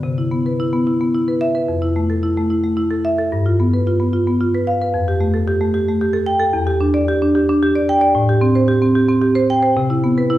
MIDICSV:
0, 0, Header, 1, 2, 480
1, 0, Start_track
1, 0, Tempo, 544959
1, 50, Time_signature, 3, 2, 24, 8
1, 3889, Tempo, 536193
1, 9230, End_track
2, 0, Start_track
2, 0, Title_t, "Marimba"
2, 0, Program_c, 0, 12
2, 29, Note_on_c, 0, 48, 55
2, 159, Note_on_c, 0, 64, 42
2, 275, Note_on_c, 0, 59, 40
2, 360, Note_off_c, 0, 64, 0
2, 405, Note_on_c, 0, 71, 44
2, 477, Note_off_c, 0, 59, 0
2, 527, Note_on_c, 0, 64, 46
2, 602, Note_off_c, 0, 71, 0
2, 643, Note_on_c, 0, 59, 44
2, 722, Note_off_c, 0, 64, 0
2, 767, Note_on_c, 0, 64, 44
2, 840, Note_off_c, 0, 59, 0
2, 888, Note_on_c, 0, 59, 42
2, 962, Note_off_c, 0, 64, 0
2, 1008, Note_on_c, 0, 64, 46
2, 1082, Note_off_c, 0, 59, 0
2, 1128, Note_on_c, 0, 71, 47
2, 1202, Note_off_c, 0, 64, 0
2, 1242, Note_on_c, 0, 76, 62
2, 1321, Note_off_c, 0, 71, 0
2, 1363, Note_on_c, 0, 71, 49
2, 1437, Note_off_c, 0, 76, 0
2, 1444, Note_off_c, 0, 48, 0
2, 1484, Note_on_c, 0, 41, 50
2, 1486, Note_off_c, 0, 71, 0
2, 1604, Note_on_c, 0, 64, 46
2, 1727, Note_on_c, 0, 57, 44
2, 1798, Note_off_c, 0, 64, 0
2, 1847, Note_on_c, 0, 69, 43
2, 1919, Note_off_c, 0, 57, 0
2, 1965, Note_on_c, 0, 64, 48
2, 2040, Note_off_c, 0, 69, 0
2, 2089, Note_on_c, 0, 57, 44
2, 2158, Note_off_c, 0, 64, 0
2, 2206, Note_on_c, 0, 64, 42
2, 2279, Note_off_c, 0, 57, 0
2, 2324, Note_on_c, 0, 57, 42
2, 2397, Note_off_c, 0, 64, 0
2, 2440, Note_on_c, 0, 64, 47
2, 2517, Note_off_c, 0, 57, 0
2, 2559, Note_on_c, 0, 69, 48
2, 2635, Note_off_c, 0, 64, 0
2, 2684, Note_on_c, 0, 76, 65
2, 2756, Note_off_c, 0, 69, 0
2, 2805, Note_on_c, 0, 69, 48
2, 2878, Note_off_c, 0, 76, 0
2, 2889, Note_off_c, 0, 41, 0
2, 2926, Note_off_c, 0, 69, 0
2, 2927, Note_on_c, 0, 43, 59
2, 3046, Note_on_c, 0, 65, 46
2, 3169, Note_on_c, 0, 59, 45
2, 3238, Note_off_c, 0, 65, 0
2, 3290, Note_on_c, 0, 71, 45
2, 3360, Note_off_c, 0, 59, 0
2, 3410, Note_on_c, 0, 65, 49
2, 3481, Note_off_c, 0, 71, 0
2, 3523, Note_on_c, 0, 59, 43
2, 3602, Note_off_c, 0, 65, 0
2, 3638, Note_on_c, 0, 65, 49
2, 3718, Note_off_c, 0, 59, 0
2, 3765, Note_on_c, 0, 59, 42
2, 3835, Note_off_c, 0, 65, 0
2, 3881, Note_on_c, 0, 65, 51
2, 3958, Note_off_c, 0, 59, 0
2, 4005, Note_on_c, 0, 71, 50
2, 4077, Note_off_c, 0, 65, 0
2, 4119, Note_on_c, 0, 77, 66
2, 4198, Note_off_c, 0, 71, 0
2, 4247, Note_on_c, 0, 71, 49
2, 4315, Note_off_c, 0, 77, 0
2, 4331, Note_off_c, 0, 43, 0
2, 4358, Note_on_c, 0, 41, 58
2, 4367, Note_off_c, 0, 71, 0
2, 4485, Note_on_c, 0, 67, 51
2, 4596, Note_on_c, 0, 57, 47
2, 4678, Note_off_c, 0, 67, 0
2, 4714, Note_on_c, 0, 69, 51
2, 4793, Note_off_c, 0, 57, 0
2, 4838, Note_on_c, 0, 67, 55
2, 4912, Note_off_c, 0, 69, 0
2, 4956, Note_on_c, 0, 57, 50
2, 5033, Note_off_c, 0, 67, 0
2, 5075, Note_on_c, 0, 67, 49
2, 5150, Note_off_c, 0, 57, 0
2, 5203, Note_on_c, 0, 57, 49
2, 5269, Note_off_c, 0, 67, 0
2, 5319, Note_on_c, 0, 67, 53
2, 5392, Note_off_c, 0, 57, 0
2, 5426, Note_on_c, 0, 69, 57
2, 5509, Note_off_c, 0, 67, 0
2, 5544, Note_on_c, 0, 79, 69
2, 5622, Note_off_c, 0, 69, 0
2, 5661, Note_on_c, 0, 69, 58
2, 5742, Note_off_c, 0, 79, 0
2, 5756, Note_off_c, 0, 41, 0
2, 5785, Note_on_c, 0, 40, 64
2, 5789, Note_off_c, 0, 69, 0
2, 5905, Note_on_c, 0, 67, 51
2, 6029, Note_on_c, 0, 62, 50
2, 6106, Note_off_c, 0, 67, 0
2, 6149, Note_on_c, 0, 74, 56
2, 6228, Note_off_c, 0, 62, 0
2, 6277, Note_on_c, 0, 67, 56
2, 6349, Note_off_c, 0, 74, 0
2, 6399, Note_on_c, 0, 62, 53
2, 6473, Note_off_c, 0, 67, 0
2, 6517, Note_on_c, 0, 67, 56
2, 6594, Note_off_c, 0, 62, 0
2, 6643, Note_on_c, 0, 62, 54
2, 6711, Note_off_c, 0, 67, 0
2, 6764, Note_on_c, 0, 67, 56
2, 6834, Note_off_c, 0, 62, 0
2, 6878, Note_on_c, 0, 74, 57
2, 6953, Note_off_c, 0, 67, 0
2, 7001, Note_on_c, 0, 79, 81
2, 7070, Note_off_c, 0, 74, 0
2, 7109, Note_on_c, 0, 74, 58
2, 7192, Note_off_c, 0, 79, 0
2, 7197, Note_off_c, 0, 40, 0
2, 7231, Note_on_c, 0, 45, 69
2, 7234, Note_off_c, 0, 74, 0
2, 7357, Note_on_c, 0, 67, 54
2, 7468, Note_on_c, 0, 60, 56
2, 7549, Note_off_c, 0, 67, 0
2, 7593, Note_on_c, 0, 72, 57
2, 7665, Note_off_c, 0, 60, 0
2, 7707, Note_on_c, 0, 67, 57
2, 7787, Note_off_c, 0, 72, 0
2, 7829, Note_on_c, 0, 60, 53
2, 7903, Note_off_c, 0, 67, 0
2, 7951, Note_on_c, 0, 67, 51
2, 8025, Note_off_c, 0, 60, 0
2, 8069, Note_on_c, 0, 60, 51
2, 8146, Note_off_c, 0, 67, 0
2, 8185, Note_on_c, 0, 67, 58
2, 8266, Note_off_c, 0, 60, 0
2, 8309, Note_on_c, 0, 72, 62
2, 8384, Note_off_c, 0, 67, 0
2, 8442, Note_on_c, 0, 79, 75
2, 8508, Note_off_c, 0, 72, 0
2, 8554, Note_on_c, 0, 72, 59
2, 8635, Note_off_c, 0, 79, 0
2, 8642, Note_off_c, 0, 45, 0
2, 8679, Note_off_c, 0, 72, 0
2, 8680, Note_on_c, 0, 48, 63
2, 8800, Note_on_c, 0, 64, 54
2, 8921, Note_on_c, 0, 59, 50
2, 8997, Note_off_c, 0, 64, 0
2, 9046, Note_on_c, 0, 71, 54
2, 9118, Note_off_c, 0, 59, 0
2, 9157, Note_on_c, 0, 64, 58
2, 9230, Note_off_c, 0, 48, 0
2, 9230, Note_off_c, 0, 64, 0
2, 9230, Note_off_c, 0, 71, 0
2, 9230, End_track
0, 0, End_of_file